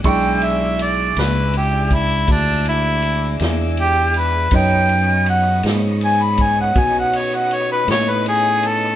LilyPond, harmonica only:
\new Staff \with { instrumentName = "Harmonica" } { \time 12/8 \key e \mixolydian \tempo 4. = 54 g''8 e''8 d''8 b'8 g'8 e'8 d'8 e'4 r8 g'8 b'8 | g''4 fis''8 r8 gis''16 b''16 gis''16 fis''16 gis''16 fis''16 cis''16 fis''16 cis''16 b'16 cis''16 b'16 gis'8 a'8 | }